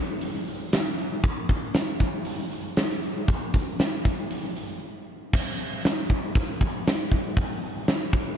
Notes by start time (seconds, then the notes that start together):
0.21 open hi-hat
0.48 open hi-hat
0.73 snare, open hi-hat
0.98 open hi-hat
1.24 kick, open hi-hat
1.49 kick, open hi-hat
1.74 snare, open hi-hat
2.00 kick, open hi-hat
2.25 open hi-hat
2.51 open hi-hat
2.77 snare, open hi-hat
2.90 snare
3.03 open hi-hat
3.28 kick, open hi-hat
3.54 kick, open hi-hat
3.79 snare, open hi-hat
4.05 kick, open hi-hat
4.31 open hi-hat
4.56 open hi-hat
5.33 kick, crash
5.85 snare, open hi-hat
6.10 kick
6.35 kick, open hi-hat
6.61 kick
6.87 snare, open hi-hat
7.12 kick
7.37 kick, open hi-hat
7.88 snare, open hi-hat
8.13 kick